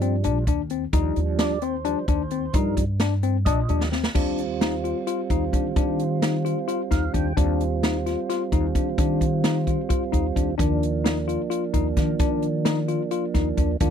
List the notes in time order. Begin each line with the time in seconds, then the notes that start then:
Already playing: G2 F3 G3
0.02 C4 D4, closed hi-hat
0.24 A#1 F3 G3 D4, closed hi-hat
0.47 D#2 D4, kick, closed hi-hat
0.70 C4, closed hi-hat
0.93 D#2 F3 G3 D4 D#4, kick, closed hi-hat
1.16 D#2, closed hi-hat
1.39 D4 D5, snare, closed hi-hat
1.62 C4 C5, closed hi-hat
1.85 F3 G3 D4, closed hi-hat
2.08 D#2 D4, kick, closed hi-hat
2.31 C4, closed hi-hat
2.53 G2 F3 G3 D4 D#4 A#4, kick, closed hi-hat
2.77 kick, closed hi-hat
3.00 D4, snare, closed hi-hat
3.23 C4, closed hi-hat
3.45 A#1 D4 D#5, kick, closed hi-hat
3.68 D#2 F3 G3 D4, closed hi-hat
3.81 snare
3.92 C4, snare
4.04 snare
4.15 D#2 G3 C4 D4 F4, kick, crash
4.38 closed hi-hat
4.61 D#4, snare, closed hi-hat
4.84 F4, closed hi-hat
5.07 F4, closed hi-hat
5.30 D#2 D#4, kick, closed hi-hat
5.53 D#3 D4, kick, closed hi-hat
5.76 D#3 D4, kick, closed hi-hat
5.99 closed hi-hat
6.22 D#4, snare, closed hi-hat
6.45 F4, closed hi-hat
6.68 F4, closed hi-hat
6.91 D#2 D#4 F5, kick, snare, closed hi-hat
7.14 D#2 D4 G5, kick, closed hi-hat
7.37 D#2 G3 C4 D4 F4, kick, closed hi-hat
7.61 closed hi-hat
7.83 D#4, snare, closed hi-hat
8.06 F4, snare, closed hi-hat
8.30 F4, snare, closed hi-hat
8.52 D#2 D#4, kick, closed hi-hat
8.75 D#3 D4, kick, closed hi-hat
8.98 D#3 D4, kick, closed hi-hat
9.21 kick, closed hi-hat
9.44 D#4, snare, closed hi-hat
9.67 F4, kick, closed hi-hat
9.89 F4, kick, closed hi-hat
10.12 D#2 D#4, kick, closed hi-hat
10.36 D#2 D4, kick, closed hi-hat
10.58 D#2 F3 A#3 D4, kick, closed hi-hat
10.83 closed hi-hat
11.04 D#4, snare, closed hi-hat
11.28 F4, closed hi-hat
11.50 F4, closed hi-hat
11.74 D#2 D#4, kick, closed hi-hat
11.97 D#3 D4, kick, snare, closed hi-hat
12.19 D#3 D4, kick, closed hi-hat
12.42 closed hi-hat
12.65 D#4, snare, closed hi-hat
12.88 F4, closed hi-hat
13.11 F4, closed hi-hat
13.34 D#2 D#4, kick, snare, closed hi-hat
13.57 D#2 D4, kick, closed hi-hat
13.80 D#2 F3 A#3 D4 F4, kick, closed hi-hat